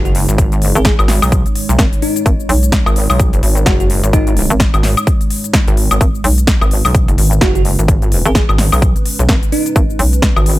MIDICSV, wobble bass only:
0, 0, Header, 1, 2, 480
1, 0, Start_track
1, 0, Key_signature, 5, "minor"
1, 0, Tempo, 468750
1, 392, Time_signature, 4, 2, 24, 8
1, 10846, End_track
2, 0, Start_track
2, 0, Title_t, "Wobble bass"
2, 0, Program_c, 0, 39
2, 0, Note_on_c, 0, 30, 93
2, 270, Note_off_c, 0, 30, 0
2, 293, Note_on_c, 0, 32, 102
2, 750, Note_off_c, 0, 32, 0
2, 1012, Note_on_c, 0, 32, 98
2, 1230, Note_off_c, 0, 32, 0
2, 1253, Note_on_c, 0, 35, 99
2, 1470, Note_off_c, 0, 35, 0
2, 1732, Note_on_c, 0, 35, 100
2, 1816, Note_off_c, 0, 35, 0
2, 2932, Note_on_c, 0, 32, 98
2, 3150, Note_off_c, 0, 32, 0
2, 3172, Note_on_c, 0, 35, 101
2, 3390, Note_off_c, 0, 35, 0
2, 3412, Note_on_c, 0, 30, 96
2, 3496, Note_off_c, 0, 30, 0
2, 3511, Note_on_c, 0, 32, 100
2, 3736, Note_off_c, 0, 32, 0
2, 3752, Note_on_c, 0, 30, 96
2, 4110, Note_off_c, 0, 30, 0
2, 4132, Note_on_c, 0, 32, 103
2, 4590, Note_off_c, 0, 32, 0
2, 4851, Note_on_c, 0, 32, 95
2, 5070, Note_off_c, 0, 32, 0
2, 5812, Note_on_c, 0, 32, 92
2, 6030, Note_off_c, 0, 32, 0
2, 6052, Note_on_c, 0, 32, 100
2, 6136, Note_off_c, 0, 32, 0
2, 6772, Note_on_c, 0, 32, 95
2, 6990, Note_off_c, 0, 32, 0
2, 7013, Note_on_c, 0, 35, 94
2, 7230, Note_off_c, 0, 35, 0
2, 7252, Note_on_c, 0, 30, 98
2, 7336, Note_off_c, 0, 30, 0
2, 7352, Note_on_c, 0, 32, 94
2, 7576, Note_off_c, 0, 32, 0
2, 7592, Note_on_c, 0, 30, 97
2, 7950, Note_off_c, 0, 30, 0
2, 7973, Note_on_c, 0, 32, 102
2, 8430, Note_off_c, 0, 32, 0
2, 8693, Note_on_c, 0, 32, 91
2, 8911, Note_off_c, 0, 32, 0
2, 8934, Note_on_c, 0, 35, 98
2, 9151, Note_off_c, 0, 35, 0
2, 9413, Note_on_c, 0, 35, 94
2, 9497, Note_off_c, 0, 35, 0
2, 10614, Note_on_c, 0, 32, 96
2, 10831, Note_off_c, 0, 32, 0
2, 10846, End_track
0, 0, End_of_file